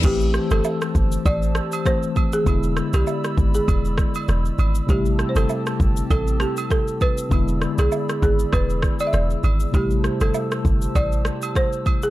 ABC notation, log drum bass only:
X:1
M:4/4
L:1/16
Q:"Swing 16ths" 1/4=99
K:Am
V:1 name="Log drum bass" clef=bass
A,,,3 G,,, z2 G,,,2 A,,,3 z4 z | E,,,3 B,,, z2 ^G,,,2 E,,,3 z E,,,2 G,,,2 | A,,,3 G,,, z2 G,,,2 A,,,3 z4 z | E,,,3 B,,, z2 ^G,,,2 E,,,3 z E,,,2 G,,,2 |
A,,,3 G,,, z2 G,,,2 A,,,3 z4 z |]